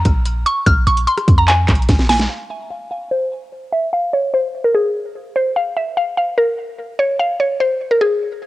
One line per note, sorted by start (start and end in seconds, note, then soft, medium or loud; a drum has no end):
0.00 0.42 A#5 medium
0.05 0.44 A#1 loud
0.05 kick loud
0.05 closed hi-hat medium
0.25 closed hi-hat medium
0.46 0.63 C#6 medium
0.46 closed hi-hat medium
0.66 0.86 A#1 loud
0.66 0.84 F6 medium
0.66 kick loud
0.66 closed hi-hat medium
0.87 1.06 A#1 loud
0.87 1.04 C#6 medium
0.87 closed hi-hat medium
0.97 closed hi-hat medium
1.07 1.36 C6 medium
1.07 closed hi-hat medium
1.17 cross-stick medium
1.17 closed hi-hat medium
1.28 1.67 F2 loud
1.28 kick loud
1.28 closed hi-hat medium
1.38 1.47 A#5 medium
1.48 2.06 G#5 loud
1.48 clap loud
1.48 closed hi-hat medium
1.68 1.88 A#1 loud
1.68 kick loud
1.68 clap loud
1.68 closed hi-hat medium
1.75 closed hi-hat medium
1.82 closed hi-hat soft
1.89 2.28 A#1 loud
1.89 kick loud
1.89 snare medium
1.89 closed hi-hat medium
1.99 snare medium
2.09 2.27 G#5 medium
2.09 snare loud
2.09 closed hi-hat medium
2.09 open hi-hat medium
2.19 snare loud
2.19 closed hi-hat soft
2.30 2.47 F5 loud
2.50 2.68 E5 medium
2.70 2.88 F5 medium
2.91 3.08 F5 medium
3.11 3.69 C5 medium
3.72 3.90 E5 medium
3.93 4.10 F5 medium
4.13 4.31 C#5 medium
4.34 4.63 C5 medium
4.64 4.73 A#4 medium
4.75 5.32 G#4 medium
5.36 5.53 C5 medium
5.56 5.74 F5 medium
5.77 5.94 E5 medium
5.97 6.15 F5 medium
6.17 6.35 F5 medium
6.38 6.95 A#4 medium
6.99 7.16 C#5 medium
7.19 7.37 F5 medium
7.40 7.57 C#5 medium
7.60 7.89 C5 medium
7.91 8.00 A#4 medium
8.01 8.47 G#4 loud